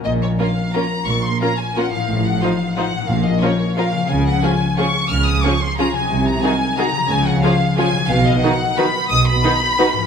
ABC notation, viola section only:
X:1
M:3/4
L:1/8
Q:1/4=178
K:Bbm
V:1 name="Viola section"
z2 [B,D]2 [B,D]2 | z2 [B,D]2 [B,D]2 | z2 [F,E]2 [F,E]2 | z2 [F,D]2 [F,D]2 |
z2 [F,D]2 [F,D]2 | z2 [F,D]2 [F,D]2 | z2 [E,E]2 [E,E]2 | z2 [F,D]2 [F,D]2 |
[K:Cblyd] z2 [^D,^D]2 [D,D]2 | z2 [^D,^D]2 [D,D]2 |]